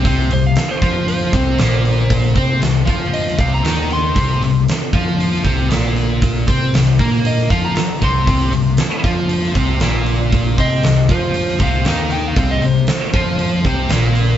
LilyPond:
<<
  \new Staff \with { instrumentName = "Lead electric guitar" } { \time 4/4 \key c \minor \tempo 4 = 117 r8 c''16 f''8 c''8. c''2~ | c''4 r4 ees''8 f''16 bes''8. c'''8~ | c'''4. r2 r8 | r2 ees''8 f''16 bes''8. c'''8~ |
c'''4. r2 r8 | r8 ees''4 c''4 f''4 g''16 f''16~ | f''16 ees''16 c''2 r4. | }
  \new Staff \with { instrumentName = "Distorted electric guitar" } { \time 4/4 \key c \minor <c c'>8 c8 r8 <f f'>4 <c c'>8 <bes, bes>4~ | <bes, bes>8 <c' c''>8 c8 <f f'>4 <c c'>8 <ees ees'>4 | <c c'>8 c8 r8 <f f'>4 <c c'>8 <bes, bes>4~ | <bes, bes>8 <c' c''>8 c8 <bes bes'>4 <f f'>8 r8 <c c'>8 |
<c c'>8 c8 r8 <f f'>4 <c c'>8 <bes, bes>4~ | <bes, bes>8 <c' c''>8 c8 <f f'>4 <c c'>8 <ees ees'>4 | <c c'>8 c8 r8 <f f'>4 <c c'>8 <bes, bes>4 | }
  \new Staff \with { instrumentName = "Picked electric bass" } { \clef bass \time 4/4 \key c \minor c,8 c,8 r8 f,4 c,8 bes,,4~ | bes,,8 c8 c,8 f,4 c,8 ees,4 | c,8 c,8 r8 f,4 c,8 bes,,4~ | bes,,8 c8 c,8 bes,4 f,8 r8 c,8 |
c,8 c,8 r8 f,4 c,8 bes,,4~ | bes,,8 c8 c,8 f,4 c,8 ees,4 | c,8 c,8 r8 f,4 c,8 bes,,4 | }
  \new DrumStaff \with { instrumentName = "Drums" } \drummode { \time 4/4 <hho bd>8 hho8 <hho sn>8 <hho bd>8 hho16 sn16 <hho bd>8 <hho sn>8 hho8 | <hho bd>8 <hho bd>8 <hho sn>8 <hho bd>8 hho16 sn16 <hho bd>8 <hho sn>8 hho8 | <hho bd>8 hho8 <hho sn>8 <hho bd>8 hho16 sn16 <hho bd>8 <hho sn>8 hho8 | <hho bd>8 <hho bd>8 <hho sn>8 <hho bd>8 hho16 sn16 <hho bd>8 <hho sn>8 <hho bd>8 |
<hho bd>8 hho8 <hho sn>8 <hho bd>8 hho16 sn16 <hho bd>8 <hho sn>8 hho8 | <hho bd>8 <hho bd>8 <hho sn>8 <hho bd>8 hho16 sn16 <hho bd>8 <hho sn>8 hho8 | <hho bd>8 hho8 <hho sn>8 <hho bd>8 hho8 <hho bd>8 <hho sn>8 hho8 | }
>>